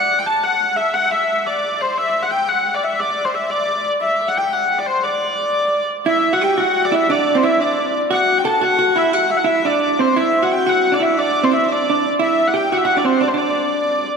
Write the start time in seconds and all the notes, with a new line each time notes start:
Already playing: F#5
0.19 G5
0.26 A5
0.44 F#5
0.76 E5
0.94 F#5
1.11 E5
1.46 D5
1.81 C5
1.98 E5
2.23 F#5
2.31 G5
2.49 F#5
2.74 D5
2.84 E5
3.00 D5
3.25 C5
3.34 E5
3.50 D5
4.02 E5
4.28 F#5
4.37 G5
4.53 F#5
4.79 D5
4.86 C5
5.03 D5
6.06 E4 E5
6.33 F#4 F#5
6.41 G4 G5
6.58 F#4 F#5
6.85 D5
6.92 E4 E5
7.10 D4 D5
7.35 C4 C5
7.43 E4 E5
7.60 D4 D5
8.11 F#4 F#5
8.38 G5
8.45 A4 A5
8.61 F#4 F#5
8.79 F#4
8.96 E4 E5
9.13 F#4 F#5
9.30 E5
9.37 F#5
9.44 E4 E5
9.65 D4 D5
9.99 C4 C5
10.16 E4 E5
10.43 F#4 F#5
10.52 G5
10.67 F#4 F#5
10.92 D4 D5
11.00 E4 E5
11.17 D4 D5
11.43 C4 C5
11.51 E4 E5
11.68 D4 D5
11.90 D4
12.19 E4 E5
12.48 F#5
12.54 G4 G5
12.72 F#4 F#5
12.77 E5
12.85 F#4 F#5
12.97 D4 D5
13.05 C4 C5
13.21 D4 D5
13.28 C5
13.34 D4 D5